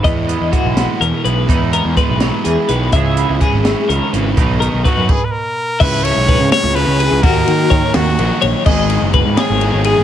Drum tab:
CC |------|------|------|---x--|
RD |------|------|------|------|
HH |xxxxxx|xxxxxx|xxxxxx|xxx---|
SD |---o--|---o--|---o--|------|
BD |o-o---|o-o---|o-o---|o-oo--|

CC |x-----|------|x-----|
RD |-xxxxx|xxxxxx|-xxxxx|
HH |------|------|------|
SD |---o--|---o--|---o--|
BD |o-o---|o-o---|o-o---|